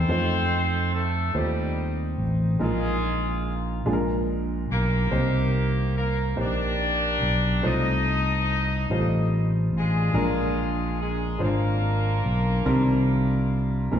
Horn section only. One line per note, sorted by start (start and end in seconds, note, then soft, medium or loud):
0.00 0.90 C4 medium
0.00 0.90 D#4 medium
0.00 0.90 A4 medium
0.00 0.90 C5 medium
0.94 1.35 A3 medium
0.94 1.35 A4 medium
1.36 2.19 G3 medium
1.36 2.58 C4 soft
1.36 2.58 D#4 soft
1.36 2.19 G4 medium
2.62 3.52 G#3 medium
2.62 3.83 D#4 medium
2.62 3.84 F4 medium
2.62 3.52 G#4 medium
4.71 5.92 A#3 medium
4.71 5.93 D#4 medium
4.71 5.93 G4 medium
4.71 5.92 A#4 medium
5.96 6.35 A#3 medium
5.96 6.35 A#4 medium
6.38 7.64 D4 medium
6.38 7.60 G4 medium
6.38 7.61 A#4 medium
6.38 7.64 D5 medium
7.66 9.47 D#4 medium
7.66 9.43 A4 medium
7.66 9.47 D#5 medium
9.76 10.97 G#3 medium
9.76 10.97 D4 medium
9.76 10.97 F4 medium
9.76 10.97 G#4 medium
11.01 11.39 G#3 medium
11.01 11.39 G#4 medium
11.44 14.00 A#3 medium
11.44 14.00 D4 medium
11.44 14.00 F4 medium
11.44 14.00 A#4 medium